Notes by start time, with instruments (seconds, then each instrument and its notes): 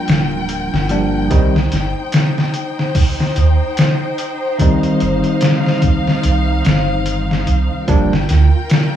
Already playing: tine electric piano F3 G3 A#3 D4, string section F4 A#4 G5
0.08 sub bass D1, snare, closed hi-hat
0.49 closed hi-hat
0.73 sub bass G1, snare
0.89 tine electric piano F3 G3 A#3 D4, closed hi-hat
1.30 sub bass C2, tine electric piano D#3 G3 C4 D#4, string section D#4 C5, kick, closed hi-hat
1.56 snare
1.72 sub bass G1, snare, closed hi-hat
2.12 snare, closed hi-hat
2.38 snare
2.54 closed hi-hat
2.79 snare
2.95 kick, open hi-hat
3.20 snare
3.36 sub bass D#2, closed hi-hat
3.77 snare, closed hi-hat
4.18 closed hi-hat
4.59 tine electric piano D#3 G3 C4 D#4, string section F5, kick, closed hi-hat
4.83 closed hi-hat
5.00 sub bass G1, closed hi-hat
5.24 closed hi-hat
5.41 snare, closed hi-hat
5.67 snare
5.82 kick, closed hi-hat
6.07 snare
6.23 sub bass C2, closed hi-hat
6.65 sub bass G1, snare, closed hi-hat
7.06 closed hi-hat
7.31 snare
7.47 sub bass C2, closed hi-hat
7.88 sub bass G1, tine electric piano F3 G3 A#3 D4, string section F4 A#4 G5, kick, closed hi-hat
8.13 snare
8.29 sub bass D2, snare, closed hi-hat
8.70 snare, closed hi-hat